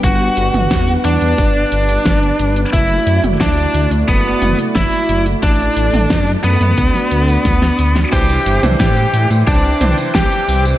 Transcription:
<<
  \new Staff \with { instrumentName = "Analog synth pad" } { \time 4/4 \key c \lydian \tempo 4 = 89 << { <d' b'>1 | <fis' d''>1 | a'2 <fis' d''>2 | <g'' d'''>1 | } \\ { <g b>1 | <a e'>1~ | <a e'>2 <a d'>2 | <c'' e''>1 | } >> }
  \new Staff \with { instrumentName = "Lead electric guitar" } { \time 4/4 \key c \lydian fis'4. d'2~ d'8 | e'8 r8 d'8 r8 b8 r8 e'8 r8 | d'4. b2~ b8 | g'8 r8 g'8 r8 d'8 r8 g'8 r8 | }
  \new Staff \with { instrumentName = "Electric grand piano" } { \time 4/4 \key c \lydian r1 | r1 | r1 | <e d' c''>8. <e d' c''>4.~ <e d' c''>16 <e d' c''>4. | }
  \new Staff \with { instrumentName = "Detuned saw bass" } { \clef bass \time 4/4 \key c \lydian g,,8 g,,16 g,,16 e,8 e,16 e,16 g,,8 g,,8 g,,8 g,,8 | fis,,8 fis,16 fis,,16 d,8 d,16 d,16 fis,,8 fis,,16 r16 fis,,16 r16 fis,,8 | a,,8 a,,16 a,,16 fis,8 fis,16 fis,16 d,16 r16 d,8 d,8 d,8 | c,8 g,,16 c,16 a,8 a,16 a,16 c,8 c,16 r16 c,16 r16 c,8 | }
  \new DrumStaff \with { instrumentName = "Drums" } \drummode { \time 4/4 <hh bd>8 hh16 <hh toml>16 <hh bd sn>16 hh16 hh16 hh16 <hh bd>8 hh16 hh16 <hh bd sn>16 hh16 hh16 hh16 | <hh bd>8 hh16 <hh toml>16 <hh bd sn>16 hh16 hh16 hh16 <hh bd>8 <hh toml>16 hh16 <hh bd sn>16 hh16 hh16 hh16 | <hh bd>16 hh16 hh16 <hh toml>16 <hh bd sn>16 hh16 hh16 <hh toml>16 <hh bd>16 <hh sn>16 hh16 hh16 <hh bd sn>16 <hh sn>16 hh16 <hh sn>16 | <cymc hh bd tamb>16 <hh tamb>16 hh16 <hh tamb toml>16 <hh bd sn tamb>16 <hh tamb>16 hh16 <hh tamb>16 <hh bd tamb>16 <hh tamb>16 <hh toml>16 <hh tamb>16 <hh bd sn tamb>16 <hh tamb>16 hho16 <hh tamb>16 | }
>>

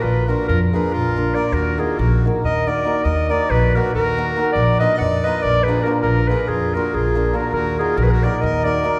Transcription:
<<
  \new Staff \with { instrumentName = "Clarinet" } { \time 7/8 \tempo 4 = 140 ces''8 bes'8 bes'8 ces''8 bes'4 d''8 | bes'8 aes'8 bes'8 r8 ees''8 d''4 | ees''8 d''8 ces''8 bes'8 bes'4. | d''8 ees''16. ges''32 r8 ees''8 d''8 ces''8 bes'8 |
bes'8 ces''8 aes'8 bes'8 aes'4 bes'8 | bes'8 aes'8 bes'32 ces''32 bes'16 d''8 ees''8 d''4 | }
  \new Staff \with { instrumentName = "Accordion" } { \time 7/8 f'8 ges'8 f'8 aes'8 f'4 bes'8 | ges'8 f'8 ges'8 r8 bes'8 bes'4 | bes'8 bes'8 ges'8 ges'8 ges'4. | bes'8 ces''16. ees''32 d''8 ces''8 bes'8 aes'8 ges'8 |
f'8 aes'8 f'8 ges'8 f'4 ges'8 | ges'8 f'8 ges'32 aes'32 ges'16 bes'8 bes'8 bes'4 | }
  \new Staff \with { instrumentName = "Hammered dulcimer" } { \time 7/8 r8 <bes d' f' bes'>8 r8 <bes d' f' bes'>8 r8 <bes d' f' bes'>8 <bes d' f' bes'>8 | r8 <bes ees' ges' bes'>8 r8 <bes ees' ges' bes'>8 r8 <bes ees' ges' bes'>8 <bes ees' ges' bes'>8 | r8 <bes ees' ges' bes'>8 r8 <bes ees' ges' bes'>8 r8 <bes ees' ges' bes'>8 <bes ees' ges' bes'>8 | r8 <bes d' f' bes'>8 r8 <bes d' f' bes'>8 r8 <bes d' f' bes'>8 <bes d' f' bes'>8 |
r8 <bes d' f' bes'>8 r8 <bes d' f' bes'>8 r8 <bes d' f' bes'>8 <bes d' f' bes'>8 | r8 <bes ees' ges' bes'>8 r8 <bes ees' ges' bes'>8 r8 <bes ees' ges' bes'>8 <bes ees' ges' bes'>8 | }
  \new Staff \with { instrumentName = "Upright bass" } { \clef bass \time 7/8 bes,,4 f,4 bes,,4. | ees,4 bes,,4 ees,4. | ees,4 bes,,4 ees,4. | bes,,4 f,4 bes,,4. |
bes,,4 f,4 bes,,4. | ees,4 bes,,4 ees,4. | }
>>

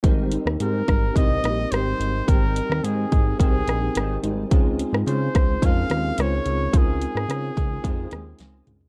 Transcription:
<<
  \new Staff \with { instrumentName = "Trumpet" } { \time 4/4 \key aes \major \tempo 4 = 108 r4 bes'4 ees''4 c''4 | bes'4 aes'4 aes'4. r8 | r4 c''4 f''4 des''4 | aes'2.~ aes'8 r8 | }
  \new Staff \with { instrumentName = "Tine electric piano" } { \time 4/4 \key aes \major <c' ees' g' bes'>2 <c' ees' g' bes'>2 | <c' ees' bes' g''>2 <c' ees' bes' g''>2 | <c' ees' f' aes'>2 <des' ees' f' bes'>2 | <c' ees' f' bes'>2 <c' ees' f' aes'>2 | }
  \new Staff \with { instrumentName = "Nylon-string guitar" } { \time 4/4 \key aes \major <aes, ees g c' ees'>8 <g c' ees'>8 <ees g c' ees'>8 <g c' ees'>8 <aes, ees g c' ees'>8 <g c' ees'>8 <ees g c' ees'>8 <g c' ees'>8 | <aes, ees g c' ees'>8 <g c' ees'>8 <ees g c' ees'>8 <g c' ees'>8 <aes, ees g c' ees'>8 <g c' ees'>8 <ees g c' ees'>8 <g c' ees'>8 | <des aes c' f'>8 <aes c' f'>8 <des aes c' f'>8 <aes c' f'>8 <des aes c' f'>8 <aes c' f'>8 <des aes c' f'>8 <aes c' f'>8 | <des aes c' f'>8 <aes c' f'>8 <des aes c' f'>8 <aes c' f'>8 <des aes c' f'>8 <aes c' f'>8 <des aes c' f'>8 <aes c' f'>8 | }
  \new Staff \with { instrumentName = "Analog synth bass" } { \clef bass \time 4/4 \key aes \major aes,,8. ees,16 aes,8 aes,,8 c,8 bes,,8 aes,,8 aes,,8 | aes,,8. ees,16 aes,8 aes,,8 c,8 bes,,8 aes,,8 aes,,8 | des,8. aes,16 des8 des,8 f,8 ees,8 des,8 des,8 | des,8. aes,16 des8 des,8 f,8 ees,8 des,8 des,8 | }
  \new DrumStaff \with { instrumentName = "Drums" } \drummode { \time 4/4 <hh bd>8 hh16 ss16 hh8 <hh bd ss>8 <hh bd>8 <hh ss>8 <hh ss>8 hh8 | <hh bd>8 hh16 ss16 hh8 <hh bd>8 <hh bd>8 <hh ss>8 <hh ss>8 hh8 | <hh bd>8 hh16 ss16 hh8 <hh bd ss>8 <hh bd>8 <hh ss>8 <hh ss>8 hh8 | <hh bd>8 hh16 ss16 <hh ss>8 <hh bd>8 <hh bd>8 <hh ss>8 <hh sn>8 <hh toml>16 tomfh16 | }
>>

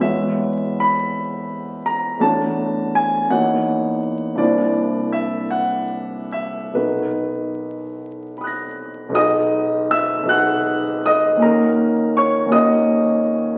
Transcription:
\new Staff \with { instrumentName = "Grand piano" } { \time 6/8 \key b \major \tempo 4. = 53 << { e''4 b''4. ais''8 | a''4 gis''8 fis''4. | d''4 e''8 fis''4 e''8 | b'4. r8 <b'' dis''' fis''' ais'''>4 |
<dis'' dis'''>4 <e'' e'''>8 <fis'' fis'''>4 <dis'' dis'''>8 | <ais' ais''>4 <cis'' cis'''>8 <dis'' dis'''>4. | } \\ { <e, gis b fis' cis''>2. | <e, a d' fis' cis''>4. <e, ais dis' fis' cis''>4. | <c, bes d' e' c''>2. | <b,, b dis' fis' ais'>2. |
<b,, b dis' fis' gis'>4. <b,, b dis' fis' gis'>4. | <dis, ais cis' dis' fis'>4. <dis, ais cis' dis' fis'>4. | } >> }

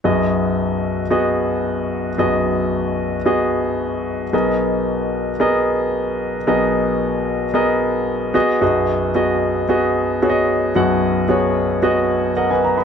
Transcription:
<<
  \new Staff \with { instrumentName = "Grand piano" } { \time 4/4 \key b \major \tempo 4 = 112 <b fis' gis' dis''>2 <b fis' gis' dis''>2 | <b fis' gis' dis''>2 <b fis' gis' dis''>2 | <b gis' ais' dis''>2 <b gis' ais' dis''>2 | <b gis' ais' dis''>2 <b gis' ais' dis''>4. <b fis' gis' dis''>8 |
<b fis' gis' dis''>4 <b fis' gis' dis''>4 <b fis' gis' dis''>4 <b fis' gis' cis'' dis''>4 | <b fis' gis' fis''>4 <b fis' gis' cis''>4 <b fis' gis' dis''>4 <ais' dis'' fis''>16 <b' gis''>16 ais''16 <dis'' b''>16 | }
  \new Staff \with { instrumentName = "Grand piano" } { \clef bass \time 4/4 \key b \major <b,, fis,>1 | <b,, fis,>1 | <b,, b,>1 | <b,, b,>2.~ <b,, b,>8 r8 |
<b,, fis,>1 | <b,, fis,>1 | }
>>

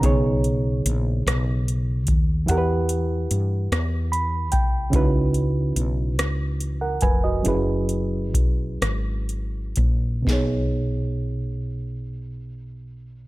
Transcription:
<<
  \new Staff \with { instrumentName = "Reed electric piano" } { \time 6/8 \key b \major \tempo 4. = 48 << { r2. | r2 b''8 g''8 | r2 r16 <ais' fis''>16 <b' gis''>16 <fis' dis''>16~ | <fis' dis''>16 r2 r8. |
r2. | } \\ { <cis b dis' gis' cis''>2. | <e e' g' ais' b' fis''>2. | <cis cis' dis' e' fis' b'>2. | <fis cis' e' gis' b'>2. |
<b, b dis' gis' cis''>2. | } >> }
  \new Staff \with { instrumentName = "Fretless electric bass" } { \clef bass \time 6/8 \key b \major b,,4 ais,,8 b,,4 dis,8 | e,4 g,8 e,4 c,8 | cis,4 b,,8 cis,4 eis,,8 | fis,,4 b,,8 gis,,4 ais,,8 |
b,,2. | }
  \new DrumStaff \with { instrumentName = "Drums" } \drummode { \time 6/8 <hh bd>8 hh8 hh8 <hh ss>8 hh8 <hh bd>8 | hh8 hh8 hh8 <hh ss>8 hh8 <hh bd>8 | <hh bd>8 hh8 hh8 <hh ss>8 hh8 <hh bd>8 | hh8 hh8 <hh bd>8 <hh ss>8 hh8 <hh bd>8 |
<bd sn>4. r4. | }
>>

